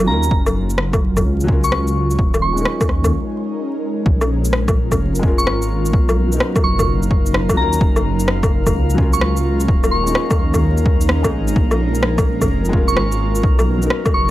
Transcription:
Already playing: F#3 B3 D#4 A#4
0.03 F#3 C#4
0.07 D#2 F4 A#5
0.11 A#4
0.23 shaker
0.31 F#1, kick
0.46 low woodblock, shaker
0.63 C#4 F4
0.70 shaker
0.78 cross-stick
0.93 kick, low woodblock, shaker
1.17 kick, low woodblock, shaker
1.25 C#2
1.40 F#3, shaker
1.47 C#4 F4, kick
1.52 A#4
1.64 C#6, shaker
1.72 C#2, cross-stick
1.87 shaker
2.11 shaker
2.18 D#1 G#3, kick
2.34 low woodblock, shaker
2.42 C#6
2.53 G#3 C#4
2.57 D#4 A#4, shaker
2.65 cross-stick
2.81 kick, low woodblock, shaker
2.89 D#2, cross-stick
3.04 D#4 A#4, kick, low woodblock, shaker
4.06 A#1 A#3 A#4, kick
4.21 low woodblock, shaker
4.45 shaker
4.53 cross-stick
4.62 F4
4.68 kick, low woodblock, shaker
4.91 kick, low woodblock, shaker
4.99 F1
5.15 shaker
5.19 G#3 C#4, kick
5.25 F4 A#4
5.38 C#6, shaker
5.46 G#1, cross-stick
5.62 shaker
5.86 shaker
5.93 B1 F#3, kick
6.09 low woodblock, shaker
6.16 B2
6.28 F#3 B3
6.32 D#4, shaker
6.36 A#4, cross-stick
6.56 kick, low woodblock, shaker
6.63 F#1 D#4 C#6
6.79 kick, low woodblock, shaker
7.03 shaker
7.11 kick
7.26 shaker
7.34 cross-stick
7.49 kick, low woodblock, shaker
7.54 D#2 F#3 C#4 A#5
7.59 F4 A#4
7.73 shaker
7.81 F#1, kick
7.96 C#4, low woodblock, shaker
8.20 shaker
8.28 cross-stick
8.43 kick, low woodblock, shaker
8.59 F4
8.66 kick, low woodblock, shaker
8.75 C#2
8.90 shaker
8.94 F#3 C#4, kick
9.00 F4 A#4
9.13 C#6, shaker
9.21 C#2, cross-stick
9.37 shaker
9.60 shaker
9.68 D#1 G#3, kick
9.84 low woodblock, shaker
9.91 C#6
10.03 G#3 C#4, shaker
10.09 D#4 A#4
10.15 cross-stick
10.30 kick, low woodblock, shaker
10.39 D#2
10.54 D#4, kick, low woodblock, shaker
10.77 shaker
10.86 kick
11.01 shaker
11.09 cross-stick
11.23 G#3 C#4 D#4 A#4, kick, low woodblock, shaker
11.32 G#1
11.48 shaker
11.56 A#1, kick
11.71 low woodblock, shaker
11.95 shaker
12.03 cross-stick
12.18 kick, low woodblock, shaker
12.30 F4
12.41 kick, low woodblock, shaker
12.50 F1
12.65 shaker
12.69 G#3 C#4
12.73 F4 A#4, kick
12.88 C#6, shaker
12.97 G#1, cross-stick
13.12 shaker
13.35 shaker
13.43 B1 F#3, kick
13.59 low woodblock, shaker
13.64 B2
13.78 F#3 B3
13.82 D#4 A#4, shaker
13.90 cross-stick
14.05 kick, low woodblock, shaker
14.14 F#1 C#6

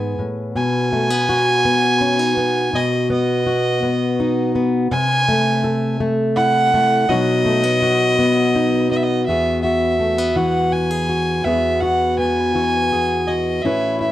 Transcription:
Already playing: G#2 B3 G#4 G#5
0.19 A2
0.55 B2 G#5
0.93 A3
1.10 B3
1.29 F#4
1.65 B3
2.01 C#4
2.19 D#4
2.37 B3
2.73 B2 D#5
3.10 B3 D#5
3.47 F#4
3.83 B3
4.20 D#4
4.55 B3
4.91 C3 G#5
5.28 A3
5.64 A4
6.00 A3
6.36 E4 F#5
6.74 A3
7.09 B2 F#3 B3 D#4 F#4 D#5
7.46 A3
7.64 B3
7.82 F#4
8.19 B3
8.56 D#4
8.91 B3 D#5
8.96 E5
9.03 D#5
9.26 E2 B3 F#4 G#4 E5
9.62 F#4 E5
10.00 A3
10.18 B3
10.36 E3 F#4 F#5
10.72 F#4 G#5
10.91 G#4
11.09 F#4
11.44 E2 B3 F#4 G#4 E5
11.80 F#4 F#5
12.19 B3 G#5
12.55 E3 F#4
12.93 G#4
13.27 F#4 D#5
13.62 A2 C#4 E4 E5
13.66 B4
14.00 E4 E5

